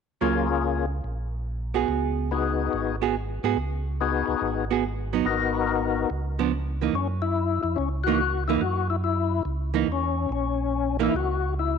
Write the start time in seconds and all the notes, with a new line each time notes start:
0.21 C#2 F#3 A#3 C#4 F4 G#4
1.04 A#1
1.74 B3 F#4 G#4
1.88 C#2
2.31 B3 D#4 F#4 G#4
2.73 G#1
3.02 B3 F#4 G#4
3.43 G#2 B3 F#4 G#4
3.57 C#2
4.01 B3 D#4 F#4 G#4
4.28 C#2
4.42 G#1
4.71 B3 F#4 G#4
5.13 F#3 B3 D#4
5.25 G#1 B3 D#4 F#4 A#4
6.10 C#2
6.39 F3 B3 D4
6.82 E3 A#3 D#4
6.93 F#2 C#4
7.22 E4
7.63 F2 E4
7.76 C#2 C#4
8.04 E3 A#3 F#4
8.08 D#4
8.48 E3 A#3 D#4 E4
8.61 F#2 F#4
8.90 E4
9.04 E4
9.45 C#2
9.74 E3 A#3 D#4
9.87 E2
9.92 C#4
10.29 A#1 C#4
10.99 E3 A#3 D#4 E4
11.14 C#2 F#4
11.59 E4